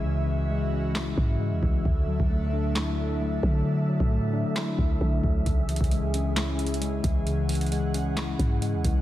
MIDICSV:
0, 0, Header, 1, 5, 480
1, 0, Start_track
1, 0, Tempo, 451128
1, 52, Time_signature, 4, 2, 24, 8
1, 9594, End_track
2, 0, Start_track
2, 0, Title_t, "Analog synth pad"
2, 0, Program_c, 0, 89
2, 0, Note_on_c, 0, 52, 79
2, 0, Note_on_c, 0, 61, 71
2, 0, Note_on_c, 0, 76, 88
2, 53, Note_on_c, 0, 66, 74
2, 1934, Note_off_c, 0, 52, 0
2, 1934, Note_off_c, 0, 61, 0
2, 1934, Note_off_c, 0, 76, 0
2, 1953, Note_off_c, 0, 66, 0
2, 1973, Note_on_c, 0, 54, 82
2, 1973, Note_on_c, 0, 62, 71
2, 1973, Note_on_c, 0, 69, 72
2, 1973, Note_on_c, 0, 76, 84
2, 5774, Note_off_c, 0, 54, 0
2, 5774, Note_off_c, 0, 62, 0
2, 5774, Note_off_c, 0, 69, 0
2, 5813, Note_on_c, 0, 52, 78
2, 5813, Note_on_c, 0, 61, 74
2, 5813, Note_on_c, 0, 68, 70
2, 7690, Note_off_c, 0, 76, 0
2, 7732, Note_on_c, 0, 78, 88
2, 9594, Note_off_c, 0, 52, 0
2, 9594, Note_off_c, 0, 61, 0
2, 9594, Note_off_c, 0, 68, 0
2, 9594, Note_off_c, 0, 78, 0
2, 9594, End_track
3, 0, Start_track
3, 0, Title_t, "Tine electric piano"
3, 0, Program_c, 1, 4
3, 0, Control_c, 1, 64, 127
3, 0, Note_on_c, 1, 49, 86
3, 0, Note_on_c, 1, 52, 81
3, 0, Note_on_c, 1, 56, 87
3, 0, Note_on_c, 1, 61, 86
3, 0, Note_on_c, 1, 64, 102
3, 54, Note_off_c, 1, 49, 0
3, 54, Note_on_c, 1, 49, 94
3, 277, Note_off_c, 1, 52, 0
3, 290, Note_on_c, 1, 52, 76
3, 292, Note_off_c, 1, 64, 0
3, 518, Note_off_c, 1, 56, 0
3, 531, Note_on_c, 1, 56, 87
3, 773, Note_off_c, 1, 61, 0
3, 773, Note_on_c, 1, 61, 83
3, 1013, Note_on_c, 1, 64, 93
3, 1253, Note_off_c, 1, 49, 0
3, 1479, Note_off_c, 1, 56, 0
3, 1491, Note_off_c, 1, 52, 0
3, 1492, Note_on_c, 1, 56, 89
3, 1732, Note_on_c, 1, 52, 82
3, 1971, Note_on_c, 1, 50, 100
3, 1972, Note_off_c, 1, 52, 0
3, 1972, Note_off_c, 1, 56, 0
3, 1973, Note_off_c, 1, 61, 0
3, 1973, Note_off_c, 1, 64, 0
3, 1986, Control_c, 1, 64, 0
3, 2169, Control_c, 1, 64, 127
3, 2208, Note_on_c, 1, 54, 81
3, 2450, Note_on_c, 1, 57, 96
3, 2693, Note_on_c, 1, 62, 79
3, 2931, Note_on_c, 1, 64, 105
3, 3171, Note_off_c, 1, 50, 0
3, 3399, Note_off_c, 1, 57, 0
3, 3410, Note_off_c, 1, 54, 0
3, 3412, Note_on_c, 1, 57, 89
3, 3651, Note_on_c, 1, 54, 81
3, 3892, Note_off_c, 1, 62, 0
3, 3892, Note_on_c, 1, 50, 92
3, 4122, Note_off_c, 1, 54, 0
3, 4131, Note_off_c, 1, 64, 0
3, 4135, Note_on_c, 1, 54, 82
3, 4360, Note_off_c, 1, 57, 0
3, 4373, Note_on_c, 1, 57, 91
3, 4610, Note_on_c, 1, 62, 90
3, 4854, Note_on_c, 1, 64, 103
3, 5092, Note_off_c, 1, 50, 0
3, 5323, Note_off_c, 1, 57, 0
3, 5333, Note_off_c, 1, 54, 0
3, 5336, Note_on_c, 1, 57, 90
3, 5574, Note_on_c, 1, 54, 75
3, 5811, Note_off_c, 1, 62, 0
3, 5812, Note_on_c, 1, 49, 81
3, 5813, Note_off_c, 1, 54, 0
3, 5813, Note_off_c, 1, 64, 0
3, 5814, Note_off_c, 1, 57, 0
3, 5823, Control_c, 1, 64, 0
3, 6003, Control_c, 1, 64, 127
3, 6052, Note_on_c, 1, 52, 84
3, 6294, Note_on_c, 1, 56, 90
3, 6531, Note_on_c, 1, 61, 83
3, 6772, Note_on_c, 1, 64, 104
3, 7012, Note_off_c, 1, 49, 0
3, 7237, Note_off_c, 1, 56, 0
3, 7250, Note_on_c, 1, 56, 83
3, 7252, Note_off_c, 1, 52, 0
3, 7492, Note_on_c, 1, 52, 78
3, 7732, Note_off_c, 1, 61, 0
3, 7734, Note_on_c, 1, 49, 98
3, 7956, Note_off_c, 1, 52, 0
3, 7969, Note_on_c, 1, 52, 78
3, 7972, Note_off_c, 1, 64, 0
3, 8198, Note_off_c, 1, 56, 0
3, 8210, Note_on_c, 1, 56, 88
3, 8453, Note_on_c, 1, 61, 81
3, 8692, Note_on_c, 1, 64, 93
3, 8933, Note_off_c, 1, 49, 0
3, 9158, Note_off_c, 1, 56, 0
3, 9170, Note_off_c, 1, 52, 0
3, 9171, Note_on_c, 1, 56, 87
3, 9412, Note_on_c, 1, 52, 81
3, 9594, Note_off_c, 1, 52, 0
3, 9594, Note_off_c, 1, 56, 0
3, 9594, Note_off_c, 1, 61, 0
3, 9594, Note_off_c, 1, 64, 0
3, 9594, End_track
4, 0, Start_track
4, 0, Title_t, "808-style bass"
4, 0, Program_c, 2, 38
4, 0, Note_on_c, 2, 37, 105
4, 1209, Note_off_c, 2, 37, 0
4, 1251, Note_on_c, 2, 44, 110
4, 1620, Note_on_c, 2, 40, 99
4, 1636, Note_off_c, 2, 44, 0
4, 1727, Note_off_c, 2, 40, 0
4, 1731, Note_on_c, 2, 37, 104
4, 1962, Note_off_c, 2, 37, 0
4, 1972, Note_on_c, 2, 38, 110
4, 2325, Note_off_c, 2, 38, 0
4, 2339, Note_on_c, 2, 38, 103
4, 3609, Note_off_c, 2, 38, 0
4, 3652, Note_on_c, 2, 50, 107
4, 4235, Note_off_c, 2, 50, 0
4, 4259, Note_on_c, 2, 45, 103
4, 4720, Note_off_c, 2, 45, 0
4, 5091, Note_on_c, 2, 38, 106
4, 5322, Note_off_c, 2, 38, 0
4, 5332, Note_on_c, 2, 50, 103
4, 5562, Note_off_c, 2, 50, 0
4, 5571, Note_on_c, 2, 38, 107
4, 5802, Note_off_c, 2, 38, 0
4, 5812, Note_on_c, 2, 37, 113
4, 6164, Note_off_c, 2, 37, 0
4, 6178, Note_on_c, 2, 37, 105
4, 7449, Note_off_c, 2, 37, 0
4, 7490, Note_on_c, 2, 37, 107
4, 8889, Note_off_c, 2, 37, 0
4, 8931, Note_on_c, 2, 44, 112
4, 9299, Note_on_c, 2, 40, 99
4, 9315, Note_off_c, 2, 44, 0
4, 9406, Note_off_c, 2, 40, 0
4, 9411, Note_on_c, 2, 37, 104
4, 9594, Note_off_c, 2, 37, 0
4, 9594, End_track
5, 0, Start_track
5, 0, Title_t, "Drums"
5, 1013, Note_on_c, 9, 38, 111
5, 1020, Note_on_c, 9, 39, 91
5, 1119, Note_off_c, 9, 38, 0
5, 1126, Note_off_c, 9, 39, 0
5, 1251, Note_on_c, 9, 36, 99
5, 1358, Note_off_c, 9, 36, 0
5, 1731, Note_on_c, 9, 36, 97
5, 1838, Note_off_c, 9, 36, 0
5, 1972, Note_on_c, 9, 36, 112
5, 2079, Note_off_c, 9, 36, 0
5, 2339, Note_on_c, 9, 36, 102
5, 2445, Note_off_c, 9, 36, 0
5, 2933, Note_on_c, 9, 38, 113
5, 2940, Note_on_c, 9, 39, 90
5, 3039, Note_off_c, 9, 38, 0
5, 3046, Note_off_c, 9, 39, 0
5, 3651, Note_on_c, 9, 36, 97
5, 3758, Note_off_c, 9, 36, 0
5, 4259, Note_on_c, 9, 36, 100
5, 4365, Note_off_c, 9, 36, 0
5, 4852, Note_on_c, 9, 38, 115
5, 4859, Note_on_c, 9, 39, 91
5, 4959, Note_off_c, 9, 38, 0
5, 4966, Note_off_c, 9, 39, 0
5, 5091, Note_on_c, 9, 36, 97
5, 5198, Note_off_c, 9, 36, 0
5, 5331, Note_on_c, 9, 36, 95
5, 5438, Note_off_c, 9, 36, 0
5, 5571, Note_on_c, 9, 36, 97
5, 5678, Note_off_c, 9, 36, 0
5, 5812, Note_on_c, 9, 36, 110
5, 5812, Note_on_c, 9, 42, 71
5, 5918, Note_off_c, 9, 36, 0
5, 5918, Note_off_c, 9, 42, 0
5, 6052, Note_on_c, 9, 42, 57
5, 6132, Note_off_c, 9, 42, 0
5, 6132, Note_on_c, 9, 42, 57
5, 6178, Note_on_c, 9, 36, 100
5, 6212, Note_off_c, 9, 42, 0
5, 6212, Note_on_c, 9, 42, 57
5, 6285, Note_off_c, 9, 36, 0
5, 6293, Note_off_c, 9, 42, 0
5, 6293, Note_on_c, 9, 42, 70
5, 6399, Note_off_c, 9, 42, 0
5, 6533, Note_on_c, 9, 42, 72
5, 6639, Note_off_c, 9, 42, 0
5, 6772, Note_on_c, 9, 38, 112
5, 6772, Note_on_c, 9, 42, 85
5, 6780, Note_on_c, 9, 39, 90
5, 6879, Note_off_c, 9, 38, 0
5, 6879, Note_off_c, 9, 42, 0
5, 6886, Note_off_c, 9, 39, 0
5, 7012, Note_on_c, 9, 42, 59
5, 7092, Note_off_c, 9, 42, 0
5, 7092, Note_on_c, 9, 42, 60
5, 7172, Note_off_c, 9, 42, 0
5, 7172, Note_on_c, 9, 42, 56
5, 7253, Note_off_c, 9, 42, 0
5, 7253, Note_on_c, 9, 42, 81
5, 7359, Note_off_c, 9, 42, 0
5, 7491, Note_on_c, 9, 36, 91
5, 7491, Note_on_c, 9, 42, 75
5, 7597, Note_off_c, 9, 36, 0
5, 7597, Note_off_c, 9, 42, 0
5, 7732, Note_on_c, 9, 42, 69
5, 7838, Note_off_c, 9, 42, 0
5, 7971, Note_on_c, 9, 42, 70
5, 7976, Note_on_c, 9, 46, 75
5, 8035, Note_off_c, 9, 42, 0
5, 8035, Note_on_c, 9, 42, 61
5, 8082, Note_off_c, 9, 46, 0
5, 8099, Note_off_c, 9, 42, 0
5, 8099, Note_on_c, 9, 42, 48
5, 8156, Note_off_c, 9, 42, 0
5, 8156, Note_on_c, 9, 42, 41
5, 8213, Note_off_c, 9, 42, 0
5, 8213, Note_on_c, 9, 42, 72
5, 8319, Note_off_c, 9, 42, 0
5, 8452, Note_on_c, 9, 42, 74
5, 8559, Note_off_c, 9, 42, 0
5, 8692, Note_on_c, 9, 38, 116
5, 8692, Note_on_c, 9, 42, 85
5, 8700, Note_on_c, 9, 39, 91
5, 8799, Note_off_c, 9, 38, 0
5, 8799, Note_off_c, 9, 42, 0
5, 8806, Note_off_c, 9, 39, 0
5, 8931, Note_on_c, 9, 36, 98
5, 8932, Note_on_c, 9, 42, 69
5, 9037, Note_off_c, 9, 36, 0
5, 9039, Note_off_c, 9, 42, 0
5, 9172, Note_on_c, 9, 42, 77
5, 9279, Note_off_c, 9, 42, 0
5, 9411, Note_on_c, 9, 36, 92
5, 9411, Note_on_c, 9, 42, 74
5, 9517, Note_off_c, 9, 36, 0
5, 9518, Note_off_c, 9, 42, 0
5, 9594, End_track
0, 0, End_of_file